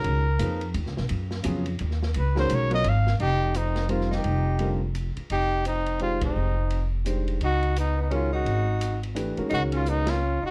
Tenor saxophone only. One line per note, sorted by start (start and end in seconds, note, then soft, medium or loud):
3.20 3.57 D#4 medium
3.55 3.89 C4 medium
3.89 4.10 C4 medium
4.11 4.77 D#4 medium
5.31 5.63 D#4 medium
5.65 5.98 C4 medium
6.00 6.20 C4 medium
6.21 6.88 C4 medium
7.43 7.74 D#4 medium
7.77 7.96 B3 medium
7.97 8.09 B3 medium
8.10 8.31 C#4 medium
8.33 8.99 D#4 medium
9.50 9.60 D#4 medium
9.73 9.88 C#4 medium
9.86 10.09 B3 medium
10.07 10.41 C#4 medium
10.42 10.51 D#4 medium